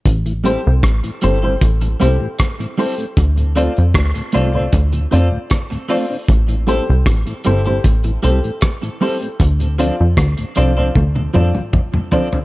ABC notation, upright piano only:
X:1
M:4/4
L:1/16
Q:1/4=77
K:Am
V:1 name="Upright piano"
z2 [GAc] z3 [GAc] [GAc] z2 [GAc] z3 [GAc] z | z2 [Fcd] z3 [Fcd] [Fcd] z2 [Fcd] z3 [Fcd] z | z2 [GAc] z3 [GAc] [GAc] z2 [GAc] z3 [GAc] z | z2 [Fcd] z3 [Fcd] [Fcd] z2 [Fcd] z3 [Fcd] z |]